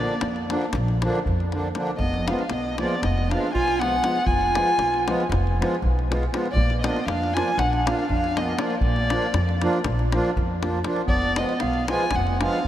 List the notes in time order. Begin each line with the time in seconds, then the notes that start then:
Already playing: D3 F3 A#3 D5
0.00 A#3 D4
0.09 davul high
0.21 F2, davul high
0.36 davul high
0.49 D3 F3 A#3 D4, davul high
0.61 davul high
0.73 A#1, davul high, davul low
0.88 davul high
1.02 D3 F3 A#3 D4, davul high
1.15 davul high
1.26 F2, davul low
1.40 davul high
1.52 D3 F3 A#3 D4, davul high
1.75 D3 F3 A#3 D4, davul high
1.87 davul high
1.98 F1 B3 D#5, davul low
2.14 davul high
2.27 F3 G#3 B3 D4 F4 F5, davul high
2.32 B3 D#5
2.38 D4 F5, davul high
2.48 B1 B3, davul high
2.53 D#5
2.77 F3 G#3 A#3 B3 F4, davul high
2.81 D5
2.99 F1 B3
3.03 D#5, davul high, davul low
3.18 davul high
3.29 F3 G#3 B3 D4 F5, davul high
3.34 F4
3.54 B1 F4 G#5, davul low
3.68 davul high
3.80 F3 G#3 B3 F4 F#5, davul high
4.02 F3 G#3 B3 F4, davul high
4.16 davul high
4.26 F1 F4 G#5, davul low
4.41 davul high
4.54 F3 G#3 B3 F4, davul high
4.68 davul high
4.78 B1, davul high
4.94 davul high
5.07 F3 G#3 B3 F4, davul high
5.20 davul high
5.29 F1, davul high, davul low
5.47 davul high
5.59 F3 G#3 B3 F4, davul high
5.75 davul high
5.82 B1, davul low
5.99 davul high
6.08 F3 G#3 B3 F4, davul high
6.23 davul high
6.32 F3 G#3 B3 F4, davul high
6.46 davul high
6.52 A#1 A#3 D5
6.56 davul low
6.70 davul high
6.82 F3 A#3 B3 D4 D#5, davul high
6.86 F4
6.96 davul high
7.05 F2 D4 F5, davul high
7.23 davul high
7.34 F3 A#3 D4 F4 G#5, davul high
7.48 davul high
7.58 A#1 D4 F#5, davul high, davul low
7.73 davul high
7.86 F3 A#3 D4 F4 F5, davul high
7.99 davul high
8.09 F2 D4 F5, davul low
8.24 davul high
8.37 F3 A#3 B3 D4 F4 D#5, davul high
8.59 F3 A#3 D4 F4 D5, davul high
8.70 davul high
8.80 A#1 D5, davul low
8.86 A#3
8.96 davul high
9.10 F3 A#3 D4 F4, davul high
9.22 davul high
9.34 F2, davul high
9.49 davul high
9.62 F3 A#3 D4 F4, davul high
9.73 davul high
9.84 A#1, davul high, davul low
9.99 davul high
10.12 F3 A#3 D4 F4, davul high
10.25 davul high
10.36 F2, davul low
10.62 F3 A#3 D4 F4, davul high
10.84 F3 A#3 D4 F4, davul high
10.96 davul high
11.05 B3 D5, davul low
11.10 F1
11.22 davul high
11.36 F3 G#3 B3 F4 D#5, davul high
11.49 davul high
11.60 B1 B3 F5, davul high
11.73 davul high
11.87 F3 G#3 B3 F4 G#5, davul high
12.00 davul high
12.11 F1 B3, davul high, davul low
12.16 F#5
12.27 davul high
12.40 F3 G#3 B3 D4 F4 F5, davul high
12.53 davul high
12.63 B3